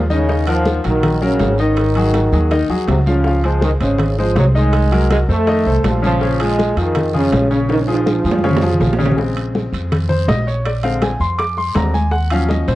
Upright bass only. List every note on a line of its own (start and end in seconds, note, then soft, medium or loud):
0.00 0.78 D#2 medium
0.85 1.37 A#1 medium
1.40 2.27 G#1 medium
2.32 2.67 D#2 medium
2.69 2.86 D#2 medium
2.88 3.75 C#2 medium
3.81 4.32 G#1 medium
4.35 5.23 C2 medium
5.28 5.63 F2 medium
5.66 5.83 C2 medium
5.84 6.71 A#1 medium
6.76 7.28 F2 medium
7.32 8.19 A#1 medium
8.24 8.76 F2 medium
8.80 9.67 A#1 medium
9.72 10.24 F2 medium
10.28 11.15 A#1 medium
11.20 11.72 F2 medium
11.76 12.62 D#2 medium
12.68 12.75 A#1 medium